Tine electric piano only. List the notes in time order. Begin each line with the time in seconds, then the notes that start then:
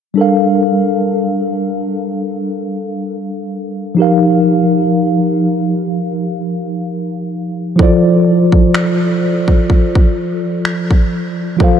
0.14 G3 D4 A4
0.19 A#4 F5
3.95 F3 D#4 G4
4.00 A#4 F5
7.76 F3 E4 A4
7.81 F4 C5 D5
11.57 F3 F4 A4
11.62 C5 F5